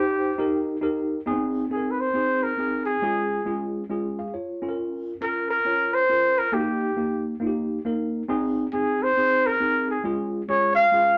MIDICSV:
0, 0, Header, 1, 3, 480
1, 0, Start_track
1, 0, Key_signature, -4, "major"
1, 0, Tempo, 438276
1, 1393, Time_signature, 4, 2, 24, 8
1, 12242, End_track
2, 0, Start_track
2, 0, Title_t, "Trumpet"
2, 0, Program_c, 0, 56
2, 0, Note_on_c, 0, 67, 85
2, 876, Note_off_c, 0, 67, 0
2, 1883, Note_on_c, 0, 68, 70
2, 2093, Note_on_c, 0, 71, 61
2, 2110, Note_off_c, 0, 68, 0
2, 2191, Note_on_c, 0, 72, 93
2, 2208, Note_off_c, 0, 71, 0
2, 2660, Note_on_c, 0, 70, 88
2, 2677, Note_off_c, 0, 72, 0
2, 3122, Note_off_c, 0, 70, 0
2, 3129, Note_on_c, 0, 68, 81
2, 4054, Note_off_c, 0, 68, 0
2, 5722, Note_on_c, 0, 70, 80
2, 6008, Note_off_c, 0, 70, 0
2, 6027, Note_on_c, 0, 70, 93
2, 6504, Note_on_c, 0, 72, 102
2, 6520, Note_off_c, 0, 70, 0
2, 6996, Note_on_c, 0, 70, 89
2, 7013, Note_off_c, 0, 72, 0
2, 7156, Note_on_c, 0, 67, 74
2, 7172, Note_off_c, 0, 70, 0
2, 7947, Note_off_c, 0, 67, 0
2, 9561, Note_on_c, 0, 68, 84
2, 9889, Note_on_c, 0, 72, 100
2, 9906, Note_off_c, 0, 68, 0
2, 10363, Note_on_c, 0, 70, 91
2, 10380, Note_off_c, 0, 72, 0
2, 10835, Note_off_c, 0, 70, 0
2, 10851, Note_on_c, 0, 68, 66
2, 10996, Note_off_c, 0, 68, 0
2, 11491, Note_on_c, 0, 73, 79
2, 11768, Note_off_c, 0, 73, 0
2, 11775, Note_on_c, 0, 77, 95
2, 12242, Note_off_c, 0, 77, 0
2, 12242, End_track
3, 0, Start_track
3, 0, Title_t, "Tine electric piano"
3, 0, Program_c, 1, 4
3, 0, Note_on_c, 1, 63, 71
3, 0, Note_on_c, 1, 67, 67
3, 0, Note_on_c, 1, 72, 77
3, 352, Note_off_c, 1, 63, 0
3, 354, Note_off_c, 1, 67, 0
3, 356, Note_off_c, 1, 72, 0
3, 417, Note_on_c, 1, 63, 87
3, 423, Note_on_c, 1, 67, 77
3, 432, Note_on_c, 1, 70, 92
3, 829, Note_off_c, 1, 63, 0
3, 831, Note_off_c, 1, 67, 0
3, 836, Note_off_c, 1, 70, 0
3, 891, Note_on_c, 1, 63, 84
3, 898, Note_on_c, 1, 67, 75
3, 908, Note_on_c, 1, 70, 96
3, 1305, Note_off_c, 1, 63, 0
3, 1309, Note_off_c, 1, 67, 0
3, 1314, Note_off_c, 1, 70, 0
3, 1379, Note_on_c, 1, 59, 75
3, 1382, Note_on_c, 1, 63, 87
3, 1394, Note_on_c, 1, 68, 114
3, 1432, Note_on_c, 1, 60, 96
3, 1461, Note_off_c, 1, 59, 0
3, 1791, Note_off_c, 1, 63, 0
3, 1797, Note_off_c, 1, 68, 0
3, 1816, Note_off_c, 1, 60, 0
3, 1859, Note_on_c, 1, 60, 58
3, 1866, Note_on_c, 1, 63, 53
3, 1877, Note_on_c, 1, 69, 59
3, 1930, Note_on_c, 1, 70, 69
3, 1949, Note_off_c, 1, 69, 0
3, 2269, Note_off_c, 1, 60, 0
3, 2273, Note_off_c, 1, 63, 0
3, 2305, Note_off_c, 1, 70, 0
3, 2341, Note_on_c, 1, 60, 67
3, 2351, Note_on_c, 1, 63, 56
3, 2361, Note_on_c, 1, 68, 70
3, 2750, Note_off_c, 1, 60, 0
3, 2756, Note_off_c, 1, 63, 0
3, 2760, Note_off_c, 1, 68, 0
3, 2821, Note_on_c, 1, 60, 59
3, 2833, Note_on_c, 1, 63, 56
3, 2837, Note_on_c, 1, 68, 69
3, 3231, Note_off_c, 1, 60, 0
3, 3237, Note_off_c, 1, 63, 0
3, 3239, Note_off_c, 1, 68, 0
3, 3308, Note_on_c, 1, 56, 87
3, 3314, Note_on_c, 1, 61, 75
3, 3320, Note_on_c, 1, 65, 75
3, 3324, Note_on_c, 1, 68, 92
3, 3715, Note_off_c, 1, 56, 0
3, 3718, Note_off_c, 1, 61, 0
3, 3721, Note_off_c, 1, 65, 0
3, 3723, Note_off_c, 1, 68, 0
3, 3780, Note_on_c, 1, 56, 74
3, 3787, Note_on_c, 1, 61, 70
3, 3793, Note_on_c, 1, 65, 70
3, 3798, Note_on_c, 1, 68, 83
3, 4191, Note_off_c, 1, 56, 0
3, 4194, Note_off_c, 1, 61, 0
3, 4197, Note_off_c, 1, 65, 0
3, 4200, Note_off_c, 1, 68, 0
3, 4266, Note_on_c, 1, 56, 77
3, 4271, Note_on_c, 1, 61, 68
3, 4275, Note_on_c, 1, 65, 70
3, 4282, Note_on_c, 1, 68, 78
3, 4576, Note_off_c, 1, 68, 0
3, 4586, Note_off_c, 1, 65, 0
3, 4588, Note_on_c, 1, 77, 55
3, 4589, Note_on_c, 1, 68, 49
3, 4674, Note_off_c, 1, 56, 0
3, 4677, Note_off_c, 1, 61, 0
3, 4747, Note_off_c, 1, 77, 0
3, 4748, Note_off_c, 1, 68, 0
3, 4751, Note_on_c, 1, 73, 60
3, 4753, Note_on_c, 1, 65, 52
3, 5053, Note_off_c, 1, 65, 0
3, 5059, Note_on_c, 1, 61, 79
3, 5066, Note_on_c, 1, 65, 71
3, 5071, Note_on_c, 1, 69, 62
3, 5109, Note_off_c, 1, 69, 0
3, 5132, Note_on_c, 1, 70, 82
3, 5209, Note_off_c, 1, 73, 0
3, 5610, Note_off_c, 1, 61, 0
3, 5614, Note_off_c, 1, 65, 0
3, 5647, Note_off_c, 1, 70, 0
3, 5703, Note_on_c, 1, 61, 69
3, 5711, Note_on_c, 1, 65, 57
3, 5721, Note_on_c, 1, 70, 75
3, 6113, Note_off_c, 1, 61, 0
3, 6117, Note_off_c, 1, 65, 0
3, 6122, Note_off_c, 1, 70, 0
3, 6187, Note_on_c, 1, 61, 66
3, 6195, Note_on_c, 1, 65, 61
3, 6202, Note_on_c, 1, 73, 68
3, 6595, Note_off_c, 1, 61, 0
3, 6599, Note_off_c, 1, 65, 0
3, 6603, Note_off_c, 1, 73, 0
3, 6672, Note_on_c, 1, 61, 64
3, 6677, Note_on_c, 1, 65, 60
3, 6685, Note_on_c, 1, 70, 72
3, 7077, Note_off_c, 1, 61, 0
3, 7080, Note_off_c, 1, 65, 0
3, 7084, Note_off_c, 1, 70, 0
3, 7141, Note_on_c, 1, 58, 89
3, 7151, Note_on_c, 1, 63, 78
3, 7157, Note_on_c, 1, 66, 76
3, 7222, Note_on_c, 1, 67, 90
3, 7231, Note_off_c, 1, 66, 0
3, 7552, Note_off_c, 1, 58, 0
3, 7557, Note_off_c, 1, 63, 0
3, 7592, Note_off_c, 1, 67, 0
3, 7628, Note_on_c, 1, 58, 68
3, 7637, Note_on_c, 1, 63, 57
3, 7641, Note_on_c, 1, 67, 69
3, 8035, Note_off_c, 1, 58, 0
3, 8040, Note_off_c, 1, 63, 0
3, 8042, Note_off_c, 1, 67, 0
3, 8104, Note_on_c, 1, 58, 75
3, 8116, Note_on_c, 1, 63, 73
3, 8126, Note_on_c, 1, 65, 69
3, 8180, Note_on_c, 1, 67, 85
3, 8195, Note_off_c, 1, 65, 0
3, 8513, Note_off_c, 1, 58, 0
3, 8520, Note_off_c, 1, 63, 0
3, 8551, Note_off_c, 1, 67, 0
3, 8595, Note_on_c, 1, 58, 76
3, 8602, Note_on_c, 1, 63, 66
3, 8610, Note_on_c, 1, 70, 85
3, 8999, Note_off_c, 1, 58, 0
3, 9002, Note_off_c, 1, 63, 0
3, 9006, Note_off_c, 1, 70, 0
3, 9074, Note_on_c, 1, 60, 100
3, 9080, Note_on_c, 1, 63, 93
3, 9086, Note_on_c, 1, 68, 105
3, 9478, Note_off_c, 1, 60, 0
3, 9481, Note_off_c, 1, 63, 0
3, 9484, Note_off_c, 1, 68, 0
3, 9563, Note_on_c, 1, 60, 66
3, 9565, Note_on_c, 1, 63, 56
3, 9574, Note_on_c, 1, 68, 75
3, 9963, Note_off_c, 1, 60, 0
3, 9964, Note_off_c, 1, 63, 0
3, 9968, Note_off_c, 1, 68, 0
3, 10042, Note_on_c, 1, 60, 65
3, 10046, Note_on_c, 1, 63, 60
3, 10058, Note_on_c, 1, 68, 71
3, 10442, Note_off_c, 1, 60, 0
3, 10444, Note_off_c, 1, 63, 0
3, 10450, Note_off_c, 1, 68, 0
3, 10515, Note_on_c, 1, 60, 66
3, 10518, Note_on_c, 1, 63, 57
3, 10531, Note_on_c, 1, 68, 69
3, 10918, Note_off_c, 1, 60, 0
3, 10920, Note_off_c, 1, 63, 0
3, 10926, Note_off_c, 1, 68, 0
3, 10993, Note_on_c, 1, 56, 86
3, 11001, Note_on_c, 1, 61, 85
3, 11005, Note_on_c, 1, 65, 82
3, 11008, Note_on_c, 1, 68, 91
3, 11398, Note_off_c, 1, 56, 0
3, 11401, Note_off_c, 1, 61, 0
3, 11403, Note_off_c, 1, 65, 0
3, 11405, Note_off_c, 1, 68, 0
3, 11484, Note_on_c, 1, 56, 70
3, 11488, Note_on_c, 1, 61, 57
3, 11492, Note_on_c, 1, 65, 60
3, 11496, Note_on_c, 1, 68, 78
3, 11883, Note_off_c, 1, 56, 0
3, 11885, Note_off_c, 1, 61, 0
3, 11887, Note_off_c, 1, 65, 0
3, 11889, Note_off_c, 1, 68, 0
3, 11954, Note_on_c, 1, 56, 63
3, 11963, Note_on_c, 1, 61, 60
3, 11967, Note_on_c, 1, 65, 61
3, 11976, Note_on_c, 1, 68, 74
3, 12242, Note_off_c, 1, 56, 0
3, 12242, Note_off_c, 1, 61, 0
3, 12242, Note_off_c, 1, 65, 0
3, 12242, Note_off_c, 1, 68, 0
3, 12242, End_track
0, 0, End_of_file